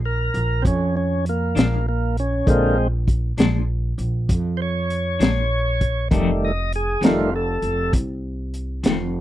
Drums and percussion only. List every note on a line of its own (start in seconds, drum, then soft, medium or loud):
0.34 closed hi-hat medium
0.65 kick medium
0.65 closed hi-hat medium
1.26 closed hi-hat medium
1.57 snare loud
1.57 closed hi-hat medium
2.17 closed hi-hat medium
2.47 kick loud
2.47 closed hi-hat medium
3.08 kick medium
3.08 closed hi-hat medium
3.38 snare loud
3.38 closed hi-hat medium
3.99 closed hi-hat medium
4.29 kick medium
4.29 closed hi-hat medium
4.90 closed hi-hat medium
5.21 snare loud
5.21 closed hi-hat medium
5.81 kick medium
5.81 closed hi-hat medium
6.11 kick loud
6.11 closed hi-hat medium
6.73 closed hi-hat medium
7.03 snare loud
7.03 closed hi-hat medium
7.62 closed hi-hat medium
7.93 kick medium
7.93 closed hi-hat medium
8.54 closed hi-hat medium
8.84 snare loud
8.84 closed hi-hat medium